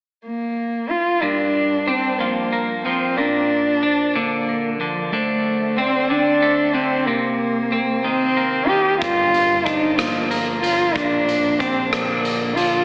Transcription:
0.26 cello A#3
0.90 cello F4
1.22 clean electric guitar G2, cello D4, vibraphone A#4
1.87 cello C4, clean electric guitar D4, vibraphone C5
2.19 clean electric guitar F3, cello A#3
2.53 clean electric guitar A#3, vibraphone A#4
2.85 clean electric guitar F3, cello C4
3.16 clean electric guitar A#2, cello D4, vibraphone A#4
3.83 clean electric guitar D4, vibraphone C5
4.14 clean electric guitar D3, cello A#3
4.49 vibraphone A#4
4.78 clean electric guitar D3, cello F3
5.11 clean electric guitar D3, cello A3, vibraphone C5
5.76 cello C4, clean electric guitar C4, vibraphone D5
6.09 clean electric guitar D3, cello D4
6.42 clean electric guitar A3, vibraphone C5
6.73 clean electric guitar D3, cello C4
7.05 clean electric guitar C3, cello A#3, vibraphone A#4
7.72 clean electric guitar C4, vibraphone C5
8.03 clean electric guitar D#3, cello C4
8.37 clean electric guitar A#3, vibraphone A#4
8.67 clean electric guitar D#3, cello G4
9.00 fingered electric bass G1, clean electric guitar G2, cello F4, vibraphone A#4, kick, closed hi-hat
9.34 closed hi-hat
9.64 clean electric guitar D4, cello D#4, vibraphone C5, kick, closed hi-hat
9.97 clean electric guitar F3, cello A#3, cross-stick, closed hi-hat
10.31 clean electric guitar A#3, vibraphone A#4, closed hi-hat
10.62 clean electric guitar F3, cello F4, closed hi-hat
10.94 fingered electric bass A#1, clean electric guitar A#2, cello D4, vibraphone A#4, kick, closed hi-hat
11.29 closed hi-hat
11.59 cello C4, clean electric guitar D4, vibraphone C5, kick, closed hi-hat
11.91 clean electric guitar D3, cello A#3, cross-stick, closed hi-hat
12.24 vibraphone A#4, closed hi-hat
12.55 clean electric guitar D3, cello F4, closed hi-hat

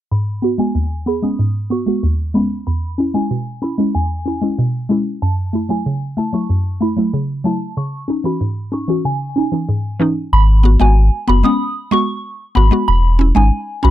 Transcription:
0.12 synth pluck G#2, synth bell B5
0.42 synth pluck B3 F#4
0.58 synth pluck G#3 B3 F#4, synth bell G#5
0.75 synth pluck D#2
1.06 synth pluck B3 G#4, synth bell B5
1.22 synth pluck G#3 B3 C#4, synth bell D#6
1.39 synth pluck G#2
1.70 synth pluck B3 F#4, synth bell C#6
1.86 synth pluck G#3 B3 F#4
2.03 synth pluck D#2
2.34 synth pluck G#3 B3 C#4, synth bell B5
2.67 synth pluck E2, synth bell B5
2.98 synth pluck C#4 E4
3.14 synth pluck G#3 C#4 E4, synth bell G#5
3.31 synth pluck B2
3.62 synth pluck C#4 E4, synth bell B5
3.78 synth pluck G#3 C#4 E4
3.95 synth pluck E2, synth bell G#5
4.26 synth pluck C#4 E4
4.41 synth pluck G#3 C#4 E4
4.58 synth pluck B2
4.89 synth pluck G#3 C#4 E4
5.22 synth pluck F#2, synth bell A5
5.53 synth pluck A3 E4
5.69 synth pluck F#3 A3 E4, synth bell G#5
5.86 synth pluck C#3
6.17 synth pluck A3 E4, synth bell A5
6.33 synth pluck F#3 A3 E4, synth bell C#6
6.50 synth pluck F#2
6.81 synth pluck A3 E4, synth bell B5
6.97 synth pluck F#3 A3 E4
7.14 synth pluck C#3
7.44 synth pluck F#3 A3 E4, synth bell A5
7.77 synth pluck C#3, synth bell C#6
8.08 synth pluck C#4 D#4
8.24 synth pluck E3 C#4 F#4, synth bell B5
8.41 synth pluck G#2
8.72 synth pluck C#4 D#4, synth bell C#6
8.88 synth pluck E3 C#4 F#4
9.05 synth pluck C#3, synth bell G#5
9.36 synth pluck C#4 D#4
9.52 synth pluck E3 C#4 D#4
9.69 synth pluck G#2
10.00 synth pluck E3 C#4 D#4
10.33 sub bass G#1, synth bell B5
10.63 synth pluck B3 F#4
10.80 sub bass G#1, synth pluck G#3 B3 F#4, synth bell G#5
11.28 sub bass F#1, synth pluck B3 F#4, synth bell B5
11.43 synth pluck G#3 B3 C#4, synth bell D#6
11.91 synth pluck G#3 B3 F#4, synth bell C#6
12.55 sub bass G#1, synth pluck B3 F#4, synth bell B5
12.71 synth pluck G#3 B3 F#4
12.88 sub bass E1, synth bell B5
13.19 synth pluck C#4 E4
13.35 sub bass G#1, synth pluck G#3 C#4 D#4, synth bell G#5
13.83 sub bass B1, synth pluck C#4 F#4, synth bell B5

